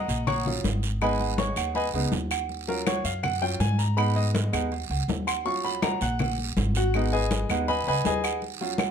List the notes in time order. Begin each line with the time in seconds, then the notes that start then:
Already playing: D#5 F#5 A#5 D#6
0.08 A#1, low agogo, short guiro
0.27 C#5 F#5 A#5 C#6, high conga, low conga, low agogo, long guiro, claves
0.46 F#3 C#4 F4, high conga, low conga
0.64 G#1, high conga, low timbale, low agogo, short guiro
0.83 high conga, short guiro
1.01 G#3 B3 D#4 B4 D#5 G#5 B5, high conga, low agogo, long guiro, claves
1.20 high conga, low agogo
1.38 C#5 C#6, high conga, low timbale, short guiro
1.56 D#2, high conga, low agogo, short guiro, claves
1.75 B4 D#5 G#5 B5, high conga, low agogo, long guiro
1.93 C#2 G#3 B3 D#4, high conga, low agogo
2.12 D#2, high conga, low timbale, short guiro
2.31 low agogo, short guiro, claves
2.49 high conga, long guiro
2.68 F#3 C#4 F4 A#4, high conga, low agogo
2.87 C#5, high conga, low timbale, low agogo, short guiro, claves
3.04 F#2 F5, low agogo, short guiro
3.23 F#5, high conga, low conga, low agogo, long guiro, claves
3.41 F#3 C#4 F4 G5, high conga
3.60 G#2 G#5, high conga, low timbale, low agogo, short guiro
3.79 A#5, high conga, short guiro
3.97 G#3 B3 D#4 B5, high conga, low agogo, long guiro, claves
4.16 D#5, high conga, low agogo
4.35 high conga, low timbale, short guiro
4.53 D#2 G#3 B3 D#4, high conga, low agogo, short guiro, claves
4.72 high conga, low agogo, long guiro
4.90 C#2, high conga, low agogo
5.08 D#2, high conga, low timbale, short guiro
5.27 C6, low agogo, short guiro, claves
5.45 F#3 C#4 F4 C#6, high conga, long guiro
5.64 B5, high conga, low agogo
5.82 A#5, high conga, low timbale, low agogo, short guiro, claves
6.01 A#1 F#5, low agogo, short guiro
6.19 high conga, low conga, low agogo, long guiro, claves
6.38 high conga
6.57 G#1, high conga, low timbale, low agogo, short guiro
6.75 F#4 F#5, high conga, short guiro
6.94 G#3 B3 D#4, high conga, low agogo, long guiro, claves
7.12 G#4 B4 D#5 G#5, high conga, low agogo
7.31 high conga, low timbale, short guiro
7.49 D#2 G#3 B3 D#4, high conga, low agogo, short guiro, claves
7.68 B4 D#5 G#5 B5, high conga, low agogo, long guiro
7.87 C#2 B4 D#5 G#5 B5, high conga, low agogo
8.05 D#2 G#4 B4 D#5 G#5, high conga, low timbale, short guiro
8.24 low agogo, short guiro, claves
8.42 high conga, long guiro
8.61 F#3 C#4 F4, high conga, low agogo
8.78 high conga, low timbale, low agogo, short guiro, claves